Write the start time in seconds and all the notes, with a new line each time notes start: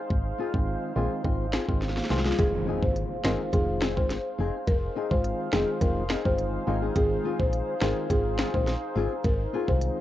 Already playing: D#4 G#4 C5 F5
0.10 G#1, kick
0.38 C4 F4 G#4
0.54 G#1 D#3 G#3 C4 F4, kick
0.96 A#1 D#3 G#3 C4 F4 G#4
1.24 G#1 D#3 G#3 C4 F4, kick
1.53 C4 F4 G#4, finger snap, snare
1.68 G#1 D#3 G#3 C4 F4, muted nylon-string guitar stroke, kick
1.82 snare
1.89 snare
1.97 snare
2.04 snare
2.10 C2 D#3 G#3 C4 F4 G#4, snare
2.18 snare
2.25 C4 F4 G#4, snare
2.32 snare
2.39 F1 D#3 G#3 C4 D#4 F4 G#4 C5 F5, kick, closed hi-hat, impact
2.67 C4 D#4 G#4
2.82 G#1 C5, kick
2.96 closed hi-hat
3.24 G1 D#3 G#3 C4 D#4 F4 G#4 A#4, finger snap, snare
3.53 F1 D#3 G#3 C4 F4 G#4, kick, closed hi-hat
3.81 C4 D#4 G#4, finger snap, snare
3.96 G1 D#3 G#3 C4 F4 C5, kick
4.10 snare, closed hi-hat
4.38 F1 C4 D#4 G#4
4.67 F1 A#4, kick, closed hi-hat
4.95 C4 D#4 G#4
5.11 G#1 D#3 G#3 C4 F4 C5, kick
5.24 closed hi-hat
5.53 F1 D#3 G#3 C4 D#4 F4 G#4, finger snap, snare
5.81 F1 D#3 G#3 C4 F4 A#4, kick, closed hi-hat
6.10 C4 D#4 G#4, finger snap, snare
6.25 G1 D#3 G#3 C4 F4 C5, kick
6.38 closed hi-hat
6.67 G#1 D#3 G#3 C4 D#4 F4 G#4
6.82 C4 D#4 G#4
6.96 G#1 D#3 G#3 C4 F4 G#4, kick, closed hi-hat
7.24 C4 F4 G#4
7.40 A#1 C5, kick
7.53 closed hi-hat
7.81 G#1 D#3 G#3 C4 F4 G#4 A#4, finger snap, snare
8.10 G#1 D#3 G#3 C4 F4 G#4, kick, closed hi-hat
8.38 C4 F4 G#4, finger snap, snare
8.54 A#1 D#3 G#3 C4 F4 C5, kick
8.67 snare, closed hi-hat
8.96 G#1 C4 F4 G#4
9.24 G#1 A#4 D#5, kick, closed hi-hat
9.53 C4 F4 G#4
9.68 C2 D#3 G#3 C4 F4 C5, kick
9.81 closed hi-hat